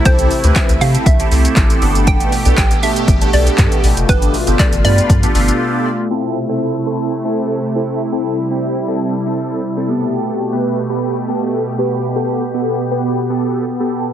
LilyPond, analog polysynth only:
\new Staff \with { instrumentName = "Analog polysynth" } { \time 4/4 \key c \major \tempo 4 = 119 <c' e' g' a'>8 r16 <c' e' g' b'>8 r16 <c' e' g' a'>8 r16 <c' e' g' a'>16 <c' e' g' a'>4 <b d' g' a'>8~ | <b d' g' a'>8 r16 <b d' g' a'>8 r16 <b d' g' a'>8 r16 <b d' g' a'>16 <b d' g' a'>4 r8 | <b d' g' a'>8 r16 <b d' g' a'>8 r16 <b d' g' b'>8 r16 <b d' g' a'>16 <b d' g' a'>4 r8 | <c' e' a'>8 r16 <c' e' a'>8 r16 <c' e' a'>8 r16 <c' e' a'>8. r16 <c' e' a'>8 r16 |
<c' e' a'>8 r16 <c' e' g'>8 r16 <c' e' a'>8 r16 <c' e' a'>8. r16 <c' e' a'>16 <b g' a'>8~ | <b g' a'>8 r16 <b g' b'>8 r16 <b g' b'>8 r16 <b g' a'>8. r16 <b g' b'>8 r16 | <b g' a'>8 r16 <b g' a'>8 r16 <b g' b'>8 r16 <b g' a'>8. r16 <b g' a'>8 r16 | }